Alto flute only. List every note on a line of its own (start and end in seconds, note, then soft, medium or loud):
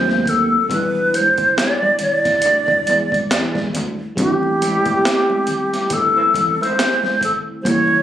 0.00 0.31 C5 loud
0.29 0.71 A4 loud
0.72 1.17 B4 loud
1.15 1.60 C5 loud
1.58 2.01 D5 loud
2.02 3.71 D5 loud
4.20 5.95 G4 medium
5.94 6.64 A4 loud
6.63 7.23 C5 loud
7.24 7.32 A4 medium
7.62 7.69 C5 medium
7.68 8.03 C#5 loud